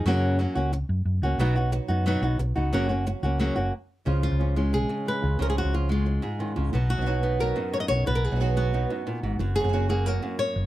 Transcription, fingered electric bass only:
X:1
M:4/4
L:1/16
Q:1/4=180
K:F#
V:1 name="Fingered electric bass" clef=bass
F,,6 C,,4 F,,2 F,,2 C,,2 | B,,,6 F,,4 B,,,2 B,,,2 C,,2 | F,,,6 C,,4 F,,,2 z4 | C,,3 C,,8 z3 C,,2 |
C,,3 C,,8 z3 C,,2 | B,,,3 B,,,8 z3 B,,,2 | B,,,3 B,,,8 z3 G,,,2 | F,,,3 F,,,8 z3 F,,,2 |]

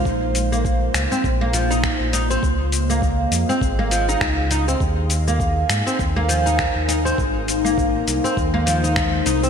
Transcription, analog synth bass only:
X:1
M:4/4
L:1/16
Q:"Swing 16ths" 1/4=101
K:Bbm
V:1 name="Analog synth bass" clef=bass
B,,,6 D,, z B,,,4- B,,, B,,,3 | D,,6 F,, z A,,,4 D,,4 | E,,6 A,, z E,,4- E,, E,,3 | A,,,6 C,, z E,,2 E,,4 C,,2 |]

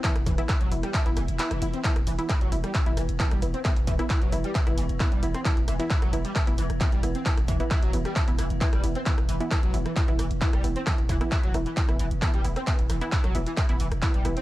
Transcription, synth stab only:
X:1
M:4/4
L:1/16
Q:1/4=133
K:Clyd
V:1 name="Synth stab"
[E,B,E] z2 [E,B,E] z2 [E,B,E] z2 [E,B,E] z2 [E,B,E] z [E,B,E] z | [E,B,E] z2 [E,B,E] z2 [E,B,E] z2 [E,B,E] z2 [E,B,E] z [E,B,E] z | [E,B,E] z2 [E,B,E] z2 [E,B,E] z2 [E,B,E] z2 [E,B,E] z [E,B,E] z | [E,B,E] z2 [E,B,E] z2 [E,B,E] z2 [E,B,E] z2 [E,B,E] z [E,B,E] z |
[E,B,E] z2 [E,B,E] z2 [E,B,E] z2 [E,B,E] z2 [E,B,E] z [E,B,E] z | [E,B,E] z2 [E,B,E] z2 [E,B,E] z2 [E,B,E] z2 [E,B,E] z [E,B,E] z | [E,B,E] z2 [E,B,E] z2 [E,B,E] z2 [E,B,E] z2 [E,B,E] z [E,B,E] z | [E,B,E] z2 [E,B,E] z2 [E,B,E] z2 [E,B,E] z2 [E,B,E] z [E,B,E] z |]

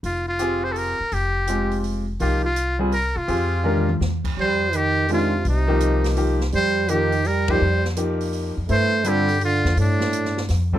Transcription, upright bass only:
X:1
M:3/4
L:1/8
Q:"Swing" 1/4=166
K:Fdor
V:1 name="Upright bass" clef=bass
F,,,4- F,,, z | F,,,6 | C,,4- C,, C, | F,,4 =E,,2 |
F,,6 | C,,6 | F,,6 | F,,4- F,, F,, |
G,,4- G,, F,, | G,,4 F,,2 |]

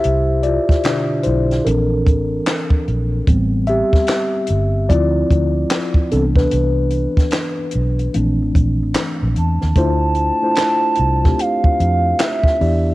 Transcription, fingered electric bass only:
X:1
M:4/4
L:1/16
Q:"Swing 16ths" 1/4=74
K:Ddor
V:1 name="Fingered electric bass" clef=bass
C,,3 z3 B,,,2 _B,,,2 A,,,2 z2 B,,,2 | A,,,3 z3 G,,,2 D,,2 D,,2 z2 C,,2 | C,,3 z3 B,,,2 _B,,, A,,, B,,, A,,, z B,,, E,, ^D,, | D,,3 z3 C,,2 z2 F,,2 z2 E,,2 |]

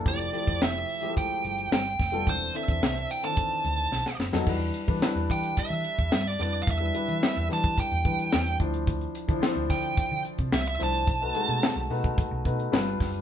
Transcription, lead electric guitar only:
X:1
M:4/4
L:1/16
Q:1/4=109
K:Ephr
V:1 name="Lead electric guitar"
d4 e4 g4 g4 | c2 e4 g a6- a z2 | z6 g2 e4 e d d3/2 f/2 | e6 a2 g6 z2 |
z6 g4 z2 e e a2- | a12- a2 z2 |]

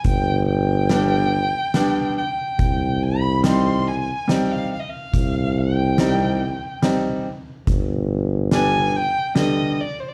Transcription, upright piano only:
X:1
M:3/4
L:1/8
Q:1/4=71
K:Cm
V:1 name="Upright piano"
z2 [G,=B,D] z [G,B,D] z | z2 [G,CE] z [G,CE] z | z2 [G,CE] z [G,CE] z | z2 [G,=B,D] z [D,G,B,] z |]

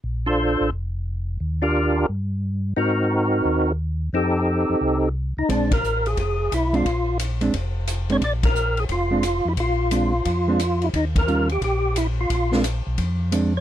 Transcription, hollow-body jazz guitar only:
X:1
M:4/4
L:1/8
Q:"Swing" 1/4=176
K:Bb
V:1 name="Hollow-body jazz guitar"
z8 | z8 | z8 | z8 |
[K:Bbmix] [A,CD] z6 [A,CD] | z3 [A,CD] z3 [A,CD] | z4 z [A,CD] z2 | z2 [A,CD] z2 [A,CD] z2 |
z2 [E,G,_DF] z4 z | z [A,CD] z4 [A,CD] z |]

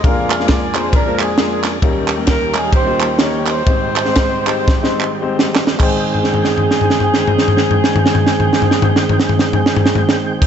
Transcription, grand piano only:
X:1
M:4/4
L:1/16
Q:"Swing" 1/4=114
K:Ab
V:1 name="Grand piano"
[A,B,=DFB]2 z [A,B,DFB]2 z [A,B,DFB]2 z [A,B,DFc]2 z [A,B,DFA]3 z | [G,B,DEB]2 z [G,B,DEB]2 z [G,B,DEB]2 z [G,B,DEF]2 z [G,B,DEB]3 z | [A,CEGc]2 z [A,CEGc]2 z [A,CEGc]2 z [A,CEGc]2 z [A,CEGc]3 z | [A,Ecg]16- |
[A,Ecg]16 |]
V:2 name="Grand piano" clef=bass
[F,,,F,,]16 | [E,,E,]16 | [A,,,A,,]16 | A,,,16- |
A,,,16 |]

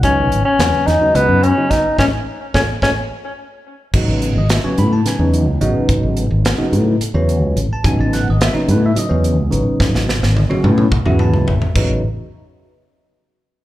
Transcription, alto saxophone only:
X:1
M:7/8
L:1/16
Q:1/4=108
K:Alyd
V:1 name="Alto saxophone"
C3 C3 D2 B,2 C2 D2 | C2 z2 C2 C2 z6 | z12 z2 | z12 z2 |
z12 z2 | z12 z2 | z12 z2 |]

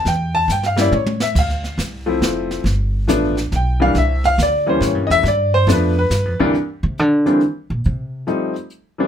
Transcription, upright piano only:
X:1
M:3/4
L:1/8
Q:"Swing" 1/4=139
K:Gdor
V:1 name="Upright piano"
g a (3g f d ^c e | f2 z4 | z4 g f | e f d c ^c [_e=e] |
d c =B B2 z | z6 | z6 |]
V:2 name="Upright piano"
z3 [G,B,_DE] z2 | z3 [F,A,CE]3 | z2 [F,A,=B,D] z2 [E,G,_B,D] | z3 [E,G,B,_D]3 |
z2 [F,A,=B,D] z2 [C,,E,G,_B,D] | z3 [E,G,B,CD] z2 | z2 [F,G,A,C_E] z2 [=E,G,B,CD] |]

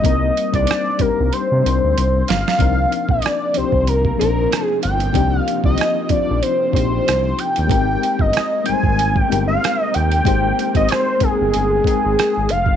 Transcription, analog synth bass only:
X:1
M:4/4
L:1/16
Q:"Swing 16ths" 1/4=94
K:Cm
V:1 name="Analog synth bass" clef=bass
C,,2 z C,, z2 C,, C,, z C, C,, D,, C,,2 G,,, z | C,,2 z B,,, z2 C,, C,,3 B,,,2 z2 G,,,2 | C,,2 z C,, z2 B,,, B,,, z2 B,,,2 C,,2 z E,, | A,,,2 z G,,, z2 A,,, A,,,3 G,,,2 z2 E,,2 |
A,,,2 z A,,, z2 G,,, G,,, G,,,2 A,,, A,,, z A,,, F,,, G,,, |]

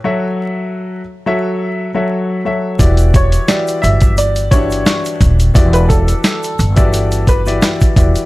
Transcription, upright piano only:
X:1
M:4/4
L:1/16
Q:"Swing 16ths" 1/4=87
K:Edor
V:1 name="Upright piano"
z16 | z2 c2 d2 e2 d2 c3 z3 | z B A8 B2 z4 |]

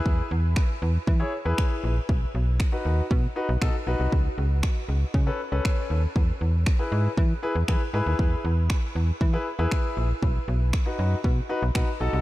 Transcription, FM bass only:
X:1
M:4/4
L:1/16
Q:1/4=118
K:E
V:1 name="FM bass" clef=bass
E,,2 E,,3 z E,,2 E,2 z E,, z2 ^A,,,2 | B,,,2 B,,,3 z D,,2 B,,2 z B,,, B,, z B,,, =C,, | C,,2 C,,3 z C,,2 C,2 z C,, z2 D,,2 | E,,2 E,,3 z G,,2 E,2 z E,, E, z G,, D,, |
E,,2 E,,3 z E,,2 E,2 z E,, z2 ^A,,,2 | B,,,2 B,,,3 z F,,2 B,,2 z B,,, B,, z B,,, =C,, |]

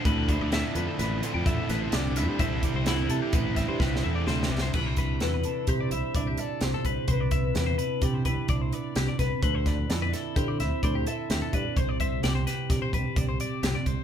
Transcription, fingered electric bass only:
X:1
M:5/4
L:1/16
Q:1/4=128
K:C
V:1 name="Fingered electric bass" clef=bass
D,,3 D,,2 z F,, z A,,,2 z F,,2 z A,,,2 C,,3 G,, | C,,2 z C,,3 C, z A,,,3 G,, C,,2 E,,2 D,,2 C,,2 | C,,4 E,,2 z2 C,2 C,, z C,,2 z2 C,, z C,, z | C,,4 E,,2 z2 C,2 C,, z C,,2 z2 C,, z C,, z |
D,,4 F,,2 z2 D,2 D,, z D,,2 z2 D,, z G,, z | C,,4 C,,2 z2 C,2 C,, z C,,2 z2 C,, z C,, z |]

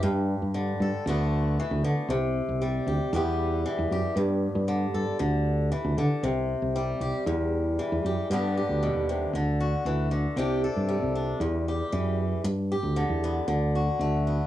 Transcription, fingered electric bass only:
X:1
M:4/4
L:1/16
Q:1/4=116
K:G
V:1 name="Fingered electric bass" clef=bass
G,,3 G,,3 G,, z D,,4- D,, D,, D, z | C,,3 C,,3 D,, z E,,4- E,, E,, F,, z | G,,3 G,,3 G,, z D,,4- D,, D,, D, z | C,,3 C,,3 C,, z E,,4- E,, E,, F,, z |
G,,3 D,,2 _E,,3 D,,4 D,,4 | C,,3 G,,2 C,,3 E,,4 F,,4 | G,,3 D,,2 E,,3 D,,4 D,,4 |]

